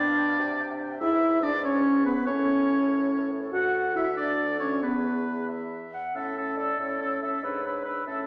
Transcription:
Already playing: bassoon B2, french horn D4, flute D5, oboe D5
0.08 clarinet F5
0.18 clarinet G5
0.29 clarinet F5
0.38 bassoon C3, clarinet G5
0.50 clarinet E5
0.61 clarinet G5
0.71 clarinet E5
0.82 clarinet G5
0.91 clarinet E5
1.00 bassoon G#2, french horn E4, clarinet G#4, oboe E5, flute E5
1.13 clarinet B4
1.23 clarinet G#4
1.33 clarinet B4
1.41 french horn D4, clarinet G#4, flute D5, oboe D5
1.54 clarinet B4
1.62 french horn C#4, clarinet G#4, flute C#5, oboe C#5
1.75 clarinet B4
1.85 clarinet G#4
1.96 clarinet B4
2.04 french horn B3, clarinet G#4, flute B4, oboe B4
2.16 clarinet B4
2.25 bassoon A2, french horn C#4, flute C#5, oboe C#5, clarinet C#5
2.38 clarinet A4
2.49 clarinet C#5
2.59 clarinet A4
2.69 clarinet C#5
2.79 clarinet A4
2.89 clarinet C#5
2.99 clarinet A4
3.10 clarinet C#5
3.19 clarinet A4
3.31 clarinet C#5
3.41 clarinet A4
3.52 bassoon D2, french horn F#4, clarinet A4, flute F#5, oboe F#5
3.95 french horn E4, oboe E5, flute E5
4.17 french horn D4, clarinet A4, oboe D5, flute D5
4.60 french horn C#4, oboe C#5, flute C#5
4.82 bassoon E2, french horn B3, clarinet G#4, flute B4, oboe B4
5.48 clarinet E5
5.94 clarinet F#5
6.15 bassoon A2, french horn C#4, oboe A4, clarinet E5, flute E6
6.35 french horn C#4, oboe A4, flute E6
6.57 french horn C#4, oboe A4, clarinet D5, flute E6
6.78 bassoon A2, french horn C#4, oboe A4, clarinet C#5, flute E6
7.00 french horn C#4, oboe A4, flute E6
7.22 french horn C#4, oboe A4, clarinet E5, flute E6
7.43 bassoon G#2, french horn D4, oboe B4, clarinet C#5, flute E6
7.64 french horn D4, oboe B4, flute E6
7.85 french horn D4, oboe B4, clarinet B4, flute E6
8.06 bassoon A2, french horn C#4, oboe A4, clarinet E5, flute E6

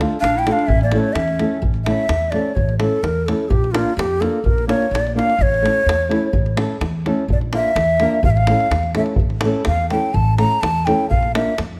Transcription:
0.00 nylon-string guitar A3 D4 F4 A4, davul high
0.20 upright bass A#1, clarinet D4, ney F5, davul high
0.36 clarinet E4, ney G5
0.46 nylon-string guitar A3 D4 F4 A4, davul high
0.52 clarinet D4, ney F5
0.59 davul high
0.67 upright bass A1, clarinet C#4, ney E5, davul low
0.81 clarinet A#3, ney D5, davul high
0.92 nylon-string guitar A3 C#4 E4 A4, davul high
0.98 clarinet A3, ney C#5
1.04 davul high
1.13 upright bass E2, clarinet C#4, ney E5, davul high
1.28 davul high
1.39 nylon-string guitar A3 C#4 E4 A4, davul high
1.62 upright bass A1, davul low
1.74 davul high
1.85 nylon-string guitar A3 C#4 E4, ney E5, davul high
1.89 nylon-string guitar A4
2.09 upright bass E2, davul high
2.31 nylon-string guitar A3 C#4 E4, ney D5, davul high
2.35 nylon-string guitar A4
2.55 upright bass A1, ney C#5, davul low
2.69 davul high
2.79 nylon-string guitar A3 C#4 E4 A4, ney A4, davul high
3.03 upright bass E2, ney A#4, davul high
3.26 nylon-string guitar A3 C#4 E4 A4, ney A4, davul high
3.49 upright bass A#1, ney G4, davul low
3.64 davul high
3.72 nylon-string guitar A#3 D4 F4 A#4, ney F4, davul high
3.97 upright bass F2, ney G4, davul high
4.21 nylon-string guitar A#3 D4 F4 A#4, ney A4, davul high
4.44 upright bass A#1, ney A#4, davul low
4.58 davul high
4.67 nylon-string guitar A#3 D4 F4 A#4, ney C#5, davul high
4.82 davul high
4.91 upright bass A#1, ney D5
4.95 davul high
5.07 davul high
5.15 nylon-string guitar A#3 D4 F4 A#4, ney F5, davul high
5.30 davul high
5.38 upright bass A1, ney C#5, davul low
5.54 davul high
5.62 nylon-string guitar A3 C#4 E4 A4, davul high
5.86 upright bass E2, davul high
6.09 nylon-string guitar A3 C#4 E4 A4, davul high
6.33 upright bass A1, davul low
6.46 davul high
6.57 nylon-string guitar A3 C#4 E4 A4, davul high
6.81 upright bass E2, davul high
7.06 nylon-string guitar A3 C#4 E4 A4, davul high
7.28 upright bass A#1, davul low
7.32 ney D5
7.41 davul high
7.52 nylon-string guitar A#3 D4 F4 A#4, ney E5, davul high
7.76 upright bass E2, davul high
8.00 nylon-string guitar A#3 D4 F4 A#4, davul high
8.23 upright bass A1, ney F5, davul low
8.30 ney E5
8.37 ney F5, davul high
8.47 nylon-string guitar A3 C#4 E4 A4, davul high
8.60 davul high
8.71 upright bass E2, davul high
8.83 davul high
8.95 nylon-string guitar A3 C#4 E4 A4, ney E5, davul high
9.06 davul high
9.16 upright bass A1, davul low
9.30 davul high
9.41 nylon-string guitar A3 C#4, davul high
9.45 nylon-string guitar E4 A4
9.65 upright bass E2, ney F5, davul high
9.90 nylon-string guitar A3 C#4 E4 A4, ney G5, davul high
10.14 upright bass A1, ney A5, davul low
10.38 nylon-string guitar A3 C#4 E4 A4, ney A#5, davul high
10.61 upright bass E2, ney A5, davul high
10.86 nylon-string guitar A3 C#4 E4 A4, ney G5, davul high
11.10 upright bass A#1, ney F5, davul low
11.23 davul high
11.35 nylon-string guitar A#3 D4 F4 A#4, ney E5, davul high
11.58 upright bass F2, davul high

